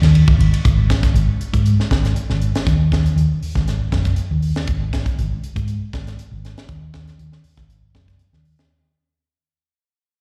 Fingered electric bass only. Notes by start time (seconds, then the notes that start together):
0.02 D#2
0.38 G#1
0.65 G#1
1.14 G#1
1.39 muted fingered electric bass stroke
1.53 G#2
1.91 G#1
2.29 G#1
2.66 D#2
3.16 D#2
3.41 muted fingered electric bass stroke
3.55 G#1
3.92 F#1
4.31 D#2
4.67 G#1
5.19 G#1
5.43 muted fingered electric bass stroke
5.56 G#2
5.93 G#1
6.31 G#1
6.69 D#2
7.18 D#2
7.44 muted fingered electric bass stroke
7.57 G#1
7.95 F#1
8.33 D#2